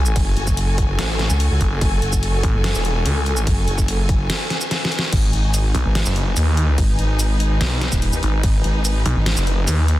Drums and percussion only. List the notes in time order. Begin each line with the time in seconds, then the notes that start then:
0.06 shaker
0.16 kick, closed hi-hat, crash
0.37 closed hi-hat
0.47 kick, shaker
0.57 closed hi-hat, crash
0.78 kick, closed hi-hat
0.99 snare, closed hi-hat, crash
1.19 snare, closed hi-hat
1.30 shaker
1.40 closed hi-hat, crash
1.61 kick, closed hi-hat
1.81 kick, closed hi-hat, crash
2.02 closed hi-hat
2.13 kick, shaker
2.23 closed hi-hat, crash
2.43 kick, closed hi-hat
2.64 snare, closed hi-hat, crash
2.75 shaker
2.85 closed hi-hat
3.06 closed hi-hat, crash
3.26 closed hi-hat
3.37 shaker
3.47 kick, closed hi-hat, crash
3.68 closed hi-hat
3.78 kick, shaker
3.88 closed hi-hat, crash
4.09 kick, closed hi-hat
4.30 snare, closed hi-hat, crash
4.50 snare, closed hi-hat
4.61 shaker
4.71 snare, closed hi-hat, crash
4.85 snare
4.92 closed hi-hat
4.99 snare
5.12 kick, closed hi-hat, crash
5.33 closed hi-hat
5.54 closed hi-hat, crash, shaker
5.75 closed hi-hat
5.95 snare, closed hi-hat, crash
6.06 shaker
6.16 closed hi-hat
6.37 closed hi-hat, crash, shaker
6.57 closed hi-hat
6.78 kick, closed hi-hat, crash
6.99 closed hi-hat
7.19 closed hi-hat, crash, shaker
7.40 closed hi-hat
7.61 snare, closed hi-hat, crash
7.81 snare, closed hi-hat
7.92 kick, shaker
8.02 closed hi-hat, crash
8.13 shaker
8.23 closed hi-hat
8.43 kick, closed hi-hat, crash
8.64 closed hi-hat
8.85 closed hi-hat, crash, shaker
9.06 closed hi-hat
9.26 snare, closed hi-hat, crash
9.37 shaker
9.47 closed hi-hat
9.68 closed hi-hat, crash, shaker
9.88 closed hi-hat